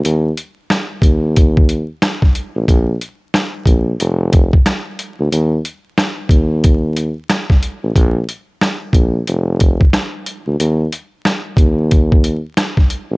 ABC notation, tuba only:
X:1
M:4/4
L:1/16
Q:"Swing 16ths" 1/4=91
K:Eb
V:1 name="Tuba" clef=bass
E,,2 z4 E,,4- E,, z4 =A,,, | B,,,2 z4 B,,,2 F,,,4 z3 D,, | E,,2 z4 E,,4- E,, z4 =A,,, | B,,,2 z4 B,,,2 F,,,4 z3 D,, |
E,,2 z4 E,,4- E,, z4 =A,,, |]